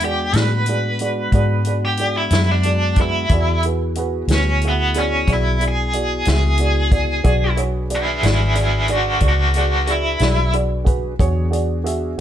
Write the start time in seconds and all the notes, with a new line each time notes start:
Already playing: E2 G#3 B3 D4 F#5
0.00 F#4 G#4, closed hi-hat
0.04 G4 D5
0.33 A2 F#4 G#4 D5, snare, closed hi-hat
0.38 B4
0.66 F#4 G#4, closed hi-hat
0.70 D5
0.99 F#4 G#4 D5, closed hi-hat
1.32 G#2 F#4 G#4 D5, kick, closed hi-hat
1.65 F#4 G#4 D5, closed hi-hat
1.85 G4
1.97 F#4 G#4 D5, closed hi-hat
2.17 E4
2.30 F#2 F#4 G#4 E5, snare, closed hi-hat
2.52 D4
2.63 F#4 G#4 D5, closed hi-hat
2.96 F#4 G#4 B4, kick, closed hi-hat
3.01 E4
3.29 E2 B3 E4 F#4 G#4, kick, closed hi-hat
3.33 D5
3.63 F#4 G#4 B4, closed hi-hat
3.95 F#4 G#4 B4, closed hi-hat
4.28 D2 F#4 G#4 B4, snare, closed hi-hat
4.32 C#4
4.61 F#4 G#4 E5, closed hi-hat
4.68 B3
4.94 F#4 G#4 D5, closed hi-hat
4.99 C#4
5.27 B1 F#4 G#4 D5, kick, snare, closed hi-hat
5.33 E4
5.60 F#4 G#4 D5, closed hi-hat
5.68 G#4
5.93 F#4 G#4 D5, closed hi-hat
6.25 C#2 F#4 G#4 E5, snare, closed hi-hat
6.31 G#4
6.57 F#4 G#4 D5, closed hi-hat
6.91 F#4 G#4 D5, kick, closed hi-hat
7.23 B1 D4 F#4 G#4 B4 D5, kick, closed hi-hat
7.57 F#4 G#4 C#5, closed hi-hat
7.90 F#4 G#4 D5, closed hi-hat
7.95 E4 G#4
8.23 G#1 F#4 G#4 D5, snare, closed hi-hat
8.29 E4 G#4
8.55 F#4 G#4 D5, closed hi-hat
8.61 E4 G#4
8.88 F#4 G#4 D5, closed hi-hat
8.93 D4 F#4
9.20 C#2 F#4 G#4 D5, kick, closed hi-hat
9.28 D4 F#4
9.54 D4 F#4 G#4 D5, closed hi-hat
9.59 F#4
9.87 E4 F#4 G#4 D5, closed hi-hat
10.19 B1 F#4 G#4 D5, snare, closed hi-hat
10.53 F#4 G#4 D5, closed hi-hat
10.84 F#4 G#4 B4, kick, closed hi-hat
11.19 E2 B3 D4 F#4 G#4 C#5, kick, closed hi-hat
11.51 F#4 G#4 D5, closed hi-hat
11.84 F#4 G#4 E5, closed hi-hat